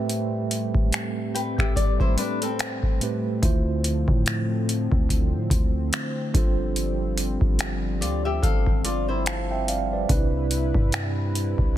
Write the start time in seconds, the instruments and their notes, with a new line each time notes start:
Already playing: tine electric piano A2 A3 C4 G4 B4 E5 G5, analog synth pad G3 A3 C4
0.09 closed hi-hat
0.51 closed hi-hat
0.75 kick
0.93 finger snap, closed hi-hat
1.34 nylon-string guitar B4 G5, closed hi-hat
1.58 nylon-string guitar G4 E5, finger snap, kick
1.76 nylon-string guitar D5, kick, closed hi-hat
2.00 nylon-string guitar E4 C5, kick
2.18 nylon-string guitar D4 B4, closed hi-hat
2.42 nylon-string guitar C4 A4, closed hi-hat
2.59 finger snap, closed hi-hat
2.83 kick
3.00 tine electric piano A2 A3 C4 G4 B4, closed hi-hat
3.42 808-style bass D2, tine electric piano D3 A3 E4 F4 C5, analog synth pad D3 F3, kick, closed hi-hat
3.84 closed hi-hat
4.08 808-style bass A2, kick
4.26 finger snap, closed hi-hat
4.69 closed hi-hat
4.92 808-style bass D2, kick
5.09 kick, closed hi-hat
5.34 808-style bass A2
5.50 808-style bass D2, kick, closed hi-hat
5.93 finger snap, closed hi-hat
6.34 808-style bass G1, analog synth pad F3 G3, tine electric piano G3 D4 F4 A4 C5, kick, closed hi-hat
6.76 closed hi-hat
7.18 closed hi-hat
7.41 808-style bass G1, kick
7.59 finger snap, closed hi-hat
8.01 808-style bass D2, nylon-string guitar F4 D5, closed hi-hat
8.25 nylon-string guitar G4 E5
8.43 808-style bass G1, nylon-string guitar A4 F5, kick, closed hi-hat
8.67 kick
8.85 nylon-string guitar F4 D5, closed hi-hat
9.08 nylon-string guitar E4 C5
9.26 tine electric piano F5 A5, finger snap, closed hi-hat
9.51 tine electric piano E5 G5
9.68 tine electric piano D5 F5, closed hi-hat
9.93 tine electric piano B4 D5
10.08 808-style bass C2, tine electric piano C3 C4 D4 D#4 B4, analog synth pad C3 G3 E4 B4, kick, closed hi-hat
10.17 tine electric piano E4
10.51 closed hi-hat
10.74 808-style bass G2, kick
10.92 finger snap, closed hi-hat
11.35 closed hi-hat
11.58 808-style bass C2, kick